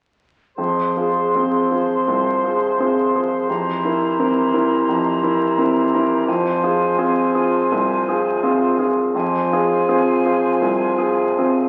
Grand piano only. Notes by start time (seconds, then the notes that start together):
0.58 F2
0.97 F4 G#4
1.35 C4 F4 G#4
1.72 F4 G#4
2.08 C2
2.44 F4 G#4
2.79 C4 F4 G#4
3.15 F4 G#4
3.50 F2
3.85 E4 A#4
4.19 C4 E4 A#4
4.53 E4 A#4
4.89 F2
5.23 E4 A#4
5.58 C4 E4 A#4
5.94 E4 A#4
6.28 F2
6.63 F4 G#4
6.98 C4 F4 G#4
7.35 F4 G#4
7.72 C2
8.08 F4 G#4
8.43 C4 F4 G#4
8.78 F4 G#4
9.15 F2
9.53 F4 G#4
9.88 C4 F4 G#4
10.26 F4 G#4
10.61 C2
10.98 F4 G#4
11.38 C4 F4 G#4